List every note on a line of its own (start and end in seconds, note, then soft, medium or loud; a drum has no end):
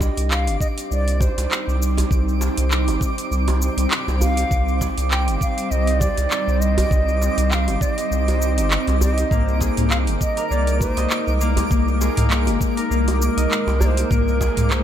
0.00 9.27 G3 medium
0.00 1.50 C4 medium
0.00 9.27 C4 medium
0.00 1.77 D4 medium
0.00 14.83 D#4 medium
0.00 1.76 G4 medium
0.00 4.47 C5 medium
0.00 1.11 D5 medium
0.00 14.83 D6 medium
0.00 kick medium
0.00 djembe slap medium
0.00 shaker medium
0.17 0.49 C2 medium
0.17 open hi-hat medium
0.17 shaker soft
0.31 0.59 F5 loud
0.31 clap loud
0.31 shaker soft
0.47 0.57 G1 medium
0.47 open hi-hat soft
0.47 shaker soft
0.60 0.67 D#5 medium
0.60 kick loud
0.60 shaker medium
0.78 open hi-hat medium
0.78 shaker soft
0.91 1.29 C2 medium
0.91 1.22 D5 medium
0.91 shaker soft
1.08 open hi-hat soft
1.08 shaker soft
1.20 1.81 C5 medium
1.20 kick loud
1.20 djembe tone medium
1.20 shaker medium
1.38 1.47 C2 medium
1.38 open hi-hat medium
1.38 djembe slap soft
1.38 shaker soft
1.51 clap medium
1.51 shaker soft
1.68 2.04 C2 medium
1.68 shaker soft
1.82 shaker medium
1.97 open hi-hat medium
1.97 djembe slap soft
1.97 djembe tone soft
1.97 djembe bass medium
1.97 shaker soft
2.11 2.49 C2 medium
2.11 kick loud
2.11 shaker soft
2.29 shaker soft
2.41 djembe slap medium
2.41 shaker medium
2.57 2.89 C2 medium
2.57 open hi-hat medium
2.57 shaker soft
2.71 clap loud
2.71 shaker soft
2.88 2.97 G1 medium
2.88 open hi-hat soft
2.88 djembe tone medium
2.88 shaker soft
3.01 kick medium
3.01 shaker medium
3.18 open hi-hat soft
3.18 shaker soft
3.31 3.70 C2 medium
3.31 shaker soft
3.48 open hi-hat soft
3.48 djembe tone medium
3.48 shaker soft
3.62 shaker medium
3.77 3.87 C2 medium
3.77 open hi-hat medium
3.77 shaker soft
3.91 clap loud
3.91 shaker soft
4.08 4.44 C2 medium
4.08 djembe slap soft
4.08 djembe tone medium
4.08 shaker soft
4.21 4.77 F5 loud
4.21 djembe slap soft
4.21 djembe bass medium
4.21 shaker medium
4.37 open hi-hat medium
4.37 shaker soft
4.51 4.89 C2 loud
4.51 9.27 C5 medium
4.51 kick loud
4.51 shaker soft
4.68 shaker soft
4.81 kick medium
4.81 djembe slap medium
4.81 shaker medium
4.98 5.29 C2 medium
4.98 open hi-hat soft
4.98 shaker soft
5.11 5.39 G5 medium
5.11 clap loud
5.11 shaker soft
5.28 5.37 G1 medium
5.28 open hi-hat soft
5.28 shaker soft
5.41 5.72 F5 medium
5.41 kick loud
5.41 shaker medium
5.58 open hi-hat soft
5.58 shaker soft
5.71 6.09 C2 medium
5.71 6.02 D#5 loud
5.71 shaker soft
5.87 open hi-hat soft
5.87 shaker soft
6.00 6.62 D5 medium
6.00 kick loud
6.00 djembe tone medium
6.00 shaker medium
6.17 6.27 C2 medium
6.17 open hi-hat soft
6.17 djembe slap soft
6.17 shaker soft
6.31 clap medium
6.31 shaker soft
6.47 6.84 C2 medium
6.47 shaker soft
6.61 7.53 D#5 loud
6.61 shaker medium
6.78 open hi-hat soft
6.78 djembe slap soft
6.78 djembe tone medium
6.78 djembe bass medium
6.78 shaker soft
6.91 7.29 C2 loud
6.91 kick loud
6.91 shaker soft
7.08 shaker soft
7.21 djembe slap medium
7.21 shaker medium
7.38 7.69 C2 medium
7.38 open hi-hat soft
7.38 djembe slap soft
7.38 shaker soft
7.51 7.75 F5 medium
7.51 7.55 G5 medium
7.51 clap loud
7.51 shaker soft
7.68 7.77 G1 medium
7.68 open hi-hat soft
7.68 djembe tone medium
7.68 shaker soft
7.75 7.83 F5 medium
7.81 7.95 D5 medium
7.81 kick loud
7.81 shaker medium
7.95 9.01 D#5 medium
7.95 open hi-hat soft
7.95 shaker soft
8.11 8.59 C2 medium
8.11 shaker soft
8.28 open hi-hat soft
8.28 djembe tone medium
8.28 shaker soft
8.42 shaker medium
8.58 8.77 G1 medium
8.58 open hi-hat medium
8.58 shaker soft
8.71 clap medium
8.71 shaker soft
8.87 9.24 C2 medium
8.87 open hi-hat soft
8.87 djembe slap soft
8.87 djembe tone medium
8.87 shaker soft
9.01 9.57 D#5 medium
9.01 djembe slap soft
9.01 djembe bass medium
9.01 shaker medium
9.18 open hi-hat soft
9.18 shaker soft
9.31 9.70 C2 loud
9.31 14.83 G#3 medium
9.31 9.77 A#3 medium
9.31 14.83 A#3 medium
9.31 14.07 A#4 medium
9.31 kick loud
9.31 mid tom medium
9.31 shaker soft
9.48 shaker soft
9.61 11.88 G#4 medium
9.61 kick medium
9.61 djembe slap medium
9.61 shaker medium
9.77 10.09 C2 medium
9.77 10.50 A#3 medium
9.77 mid tom medium
9.77 open hi-hat soft
9.77 shaker soft
9.90 9.97 F5 loud
9.90 clap medium
9.90 shaker soft
10.07 10.17 G1 medium
10.07 open hi-hat soft
10.07 shaker soft
10.20 10.48 D#5 medium
10.20 kick medium
10.20 shaker medium
10.37 12.49 A#4 medium
10.37 open hi-hat soft
10.37 shaker soft
10.50 10.89 C2 medium
10.50 11.41 A#3 medium
10.50 10.78 D5 medium
10.50 shaker soft
10.67 open hi-hat soft
10.67 shaker soft
10.80 11.37 C5 medium
10.80 kick loud
10.80 djembe tone medium
10.80 shaker medium
10.97 11.07 C2 medium
10.97 12.76 D#5 medium
10.97 open hi-hat soft
10.97 djembe slap soft
10.97 shaker soft
11.10 clap medium
11.10 shaker soft
11.27 11.64 C2 medium
11.27 shaker soft
11.41 11.70 A#3 medium
11.41 shaker medium
11.57 open hi-hat soft
11.57 djembe slap soft
11.57 djembe tone medium
11.57 djembe bass medium
11.57 shaker soft
11.71 12.09 C2 loud
11.71 12.17 A#3 medium
11.71 kick loud
11.71 shaker soft
11.88 shaker soft
12.01 14.28 G#4 medium
12.01 djembe slap medium
12.01 shaker medium
12.17 12.49 C2 medium
12.17 12.90 A#3 medium
12.17 mid tom medium
12.17 open hi-hat soft
12.17 shaker soft
12.31 clap medium
12.31 shaker soft
12.47 12.57 G1 medium
12.47 open hi-hat soft
12.47 djembe tone medium
12.47 shaker soft
12.61 kick medium
12.61 shaker medium
12.77 14.83 A#4 medium
12.77 open hi-hat soft
12.77 shaker soft
12.91 13.29 C2 medium
12.91 13.80 A#3 medium
12.91 shaker soft
13.08 open hi-hat soft
13.08 djembe tone medium
13.08 shaker soft
13.21 13.82 A#4 medium
13.21 shaker medium
13.37 13.47 C2 medium
13.37 14.83 D#5 medium
13.37 open hi-hat medium
13.37 shaker soft
13.51 clap medium
13.51 shaker soft
13.67 14.04 C2 medium
13.67 djembe slap soft
13.67 djembe tone medium
13.67 shaker soft
13.80 14.10 A#3 medium
13.80 13.87 D5 medium
13.80 djembe slap soft
13.80 djembe bass medium
13.80 shaker medium
13.86 14.12 C5 medium
13.97 open hi-hat medium
13.97 shaker soft
14.10 14.49 C2 loud
14.10 14.57 A#3 medium
14.10 14.72 A#4 medium
14.10 14.83 C5 medium
14.10 kick loud
14.10 mid tom medium
14.10 shaker soft
14.28 shaker soft
14.41 14.83 G#4 medium
14.41 kick medium
14.41 djembe slap medium
14.41 shaker medium
14.57 14.83 C2 medium
14.57 14.83 A#3 medium
14.57 mid tom medium
14.57 open hi-hat medium
14.57 shaker soft
14.71 14.83 C5 medium
14.71 clap medium
14.71 shaker soft